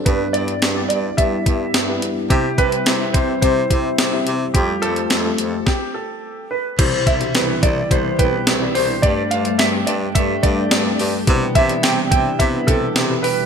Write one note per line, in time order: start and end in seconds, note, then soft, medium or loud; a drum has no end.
0.00 4.51 G3 medium
0.00 2.26 D4 medium
0.05 0.26 G2 medium
0.05 0.86 G2 medium
0.05 0.28 B3 medium
0.05 0.28 E4 medium
0.05 2.28 E4 medium
0.05 0.28 G4 medium
0.05 0.35 B4 medium
0.05 0.29 D5 medium
0.05 kick loud
0.05 closed hi-hat medium
0.33 0.54 G2 medium
0.33 0.67 B3 medium
0.33 0.67 E4 medium
0.33 0.67 G4 medium
0.33 0.87 D5 medium
0.33 0.68 D5 medium
0.33 closed hi-hat medium
0.48 closed hi-hat soft
0.62 0.82 G2 medium
0.62 snare loud
0.62 closed hi-hat medium
0.76 1.09 B3 medium
0.76 1.09 E4 medium
0.76 1.10 G4 medium
0.76 1.10 D5 medium
0.89 1.10 G2 medium
0.89 1.18 D5 medium
0.89 closed hi-hat medium
1.17 1.38 G2 medium
1.17 1.40 B3 medium
1.17 1.40 E4 medium
1.17 1.41 G4 medium
1.17 1.41 D5 medium
1.17 1.98 E5 medium
1.17 kick medium
1.17 closed hi-hat medium
1.46 1.66 G2 medium
1.46 1.79 B3 medium
1.46 1.79 E4 medium
1.46 1.80 G4 medium
1.46 1.80 E5 medium
1.46 kick medium
1.46 closed hi-hat medium
1.74 1.95 G2 medium
1.74 snare loud
1.74 closed hi-hat medium
1.88 2.21 B3 medium
1.88 2.21 E4 medium
1.88 2.22 G4 medium
1.88 2.22 B4 medium
2.02 closed hi-hat medium
2.30 2.50 C3 loud
2.30 3.11 C3 medium
2.30 2.52 C4 medium
2.30 4.52 C4 medium
2.30 4.52 E4 medium
2.30 2.52 E4 medium
2.30 2.59 G4 medium
2.30 2.53 G4 medium
2.30 2.53 E5 medium
2.30 kick medium
2.30 closed hi-hat medium
2.58 2.78 C3 medium
2.58 2.91 C4 medium
2.58 2.91 E4 medium
2.58 2.92 G4 medium
2.58 3.16 B4 loud
2.58 2.92 G5 medium
2.58 kick medium
2.58 closed hi-hat medium
2.72 closed hi-hat soft
2.86 3.07 C3 medium
2.86 snare loud
2.86 closed hi-hat medium
3.00 3.33 C4 medium
3.00 3.34 E4 medium
3.00 3.34 G4 medium
3.00 3.34 E5 medium
3.13 3.35 C3 medium
3.13 3.40 C5 medium
3.13 kick medium
3.13 closed hi-hat medium
3.42 3.63 C3 medium
3.42 3.64 C4 medium
3.42 3.65 E4 medium
3.42 3.65 G4 medium
3.42 4.22 C5 medium
3.42 3.65 C5 medium
3.42 kick medium
3.42 closed hi-hat medium
3.70 3.91 C3 medium
3.70 4.04 C4 medium
3.70 4.04 E4 medium
3.70 4.04 G4 medium
3.70 4.04 E5 medium
3.70 kick medium
3.70 closed hi-hat medium
3.98 4.19 C3 medium
3.98 snare loud
3.98 closed hi-hat medium
4.12 4.46 C4 medium
4.12 4.46 E4 medium
4.12 4.46 G4 medium
4.12 4.46 E5 medium
4.27 4.47 C3 medium
4.27 closed hi-hat medium
4.54 4.75 F2 loud
4.54 5.66 G3 medium
4.54 4.77 A3 medium
4.54 5.66 A3 medium
4.54 5.66 F4 medium
4.54 4.77 F4 medium
4.54 4.83 G4 medium
4.54 4.77 G4 medium
4.54 4.77 C5 medium
4.54 kick loud
4.54 closed hi-hat medium
4.82 5.03 F2 medium
4.82 5.16 A3 medium
4.82 5.16 F4 medium
4.82 5.16 G4 medium
4.82 5.69 A4 loud
4.82 5.16 C5 medium
4.82 closed hi-hat medium
4.96 closed hi-hat soft
5.10 5.31 F2 loud
5.10 snare loud
5.10 closed hi-hat medium
5.25 5.58 A3 medium
5.25 5.58 F4 medium
5.25 5.58 G4 medium
5.25 5.59 A4 medium
5.38 5.59 F2 medium
5.38 closed hi-hat medium
5.66 6.47 G4 medium
5.66 kick medium
5.66 snare medium
5.94 6.52 A4 medium
6.51 6.77 B4 medium
6.78 6.99 C2 medium
6.78 7.12 B2 medium
6.78 7.59 C3 medium
6.78 9.01 E3 medium
6.78 9.03 E3 medium
6.78 13.46 G3 medium
6.78 13.46 D4 medium
6.78 7.12 E4 medium
6.78 9.01 E4 medium
6.78 7.12 G4 medium
6.78 7.08 C5 medium
6.78 7.12 C5 medium
6.78 kick loud
6.78 closed hi-hat medium
6.78 crash medium
7.07 7.27 C2 medium
7.07 7.61 E4 medium
7.07 7.36 E5 medium
7.07 kick medium
7.07 closed hi-hat medium
7.20 7.76 B2 medium
7.20 7.76 E4 medium
7.20 7.76 G4 medium
7.20 7.77 C5 medium
7.20 closed hi-hat soft
7.35 7.55 C2 loud
7.35 8.18 G4 medium
7.35 7.64 B4 medium
7.35 snare loud
7.35 closed hi-hat medium
7.63 7.83 C2 medium
7.63 8.46 E4 medium
7.63 7.92 D5 medium
7.63 kick loud
7.63 closed hi-hat medium
7.90 8.11 C2 medium
7.90 8.13 B3 medium
7.90 9.09 B3 medium
7.90 8.13 E4 medium
7.90 8.13 G4 medium
7.90 8.20 C5 medium
7.90 8.14 C5 medium
7.90 kick medium
7.90 closed hi-hat medium
8.19 8.39 C2 medium
8.19 8.52 B2 medium
8.19 8.52 E4 medium
8.19 8.75 G4 medium
8.19 8.52 G4 medium
8.19 8.71 B4 medium
8.19 8.53 B4 medium
8.19 kick medium
8.19 closed hi-hat medium
8.47 8.67 C2 medium
8.47 9.09 E4 medium
8.47 snare loud
8.47 closed hi-hat loud
8.61 8.94 B3 medium
8.61 8.94 E4 medium
8.61 8.95 G4 medium
8.61 8.95 D5 medium
8.75 8.95 C2 medium
8.75 9.59 G4 medium
8.75 9.04 C5 medium
8.75 open hi-hat medium
9.02 9.83 G2 medium
9.02 9.23 G2 loud
9.02 12.53 G3 medium
9.02 9.36 A3 medium
9.02 11.25 A3 medium
9.02 9.36 D4 medium
9.02 9.36 G4 medium
9.02 9.32 D5 loud
9.02 9.37 D5 medium
9.02 kick loud
9.02 closed hi-hat medium
9.31 9.51 G2 medium
9.31 9.86 D4 medium
9.31 9.60 F5 loud
9.31 closed hi-hat medium
9.45 9.52 G3 medium
9.45 10.01 D4 medium
9.45 10.01 G4 medium
9.45 10.01 D5 medium
9.45 closed hi-hat soft
9.51 10.04 A3 medium
9.59 9.79 G2 medium
9.59 10.43 G4 medium
9.59 9.65 E5 loud
9.59 snare loud
9.59 closed hi-hat medium
9.87 10.07 G2 loud
9.87 10.70 D4 medium
9.87 9.93 D5 medium
9.87 closed hi-hat medium
10.15 10.35 G2 medium
10.15 10.37 A3 medium
10.15 11.27 A3 medium
10.15 10.37 D4 medium
10.15 10.38 G4 medium
10.15 10.38 A4 medium
10.15 10.41 E5 loud
10.15 kick medium
10.15 closed hi-hat loud
10.43 10.64 G2 medium
10.43 10.76 A3 medium
10.43 10.77 D4 medium
10.43 10.99 G4 medium
10.43 10.77 G4 medium
10.43 10.70 D5 medium
10.43 10.77 F5 medium
10.43 kick medium
10.43 closed hi-hat medium
10.71 10.92 G2 medium
10.71 11.33 D4 medium
10.71 11.10 D5 medium
10.71 snare loud
10.71 closed hi-hat medium
10.85 11.19 A3 medium
10.85 11.19 D4 medium
10.85 11.19 G4 medium
10.85 11.19 D5 medium
10.99 11.20 G2 loud
10.99 11.83 G4 medium
10.99 open hi-hat medium
11.27 11.60 B2 medium
11.27 11.48 C3 loud
11.27 12.08 C3 medium
11.27 13.46 E3 medium
11.27 13.46 B3 medium
11.27 12.39 B3 medium
11.27 11.61 E4 medium
11.27 13.46 G4 medium
11.27 11.61 G4 medium
11.27 11.61 B4 medium
11.27 kick loud
11.27 closed hi-hat medium
11.55 11.76 C3 loud
11.55 12.11 E4 medium
11.55 11.84 E5 loud
11.55 kick medium
11.55 closed hi-hat medium
11.69 12.25 B3 medium
11.69 12.25 E4 medium
11.69 12.25 G4 medium
11.69 12.25 D5 medium
11.69 closed hi-hat soft
11.83 12.04 C3 loud
11.83 12.67 G4 medium
11.83 12.10 G5 loud
11.83 snare loud
11.83 closed hi-hat medium
12.11 12.32 C3 medium
12.11 12.95 E4 medium
12.11 12.40 G5 medium
12.11 kick loud
12.11 closed hi-hat medium
12.39 12.60 C3 loud
12.39 12.62 B3 medium
12.39 13.46 B3 medium
12.39 12.62 E4 medium
12.39 12.62 G4 medium
12.39 12.62 B4 medium
12.39 12.68 E5 medium
12.39 kick medium
12.39 closed hi-hat loud
12.67 13.01 B2 medium
12.67 12.88 C3 medium
12.67 13.01 E4 medium
12.67 13.23 G4 medium
12.67 13.01 G4 medium
12.67 13.25 A4 medium
12.67 13.01 B4 medium
12.67 kick medium
12.67 closed hi-hat medium
12.96 13.16 C3 loud
12.96 13.46 E4 medium
12.96 snare loud
12.96 closed hi-hat loud
13.09 13.43 B2 medium
13.09 13.43 E4 medium
13.09 13.43 G4 medium
13.09 13.43 B4 medium
13.23 13.46 G4 medium
13.23 13.46 B4 medium
13.23 open hi-hat medium